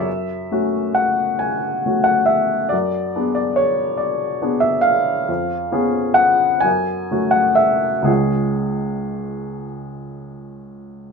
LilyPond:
\new Staff \with { instrumentName = "Upright piano" } { \time 12/8 \key fis \minor \tempo 4. = 44 << { e''4 fis''8 gis''8. fis''16 e''8 d''8. d''16 cis''8 d''8. e''16 eis''8~ | eis''4 fis''8 gis''8. fis''16 e''8 gis'4. r4. | } \\ { fis,8 <a cis' fis'>4. <a cis' fis'>4 fis,8 <b d' gis'>4. <b d' gis'>4 | eis,8 <b cis' gis'>4 fis,8 <a cis' fis'>4 <cis, gis cis' eis'>2. | } >> }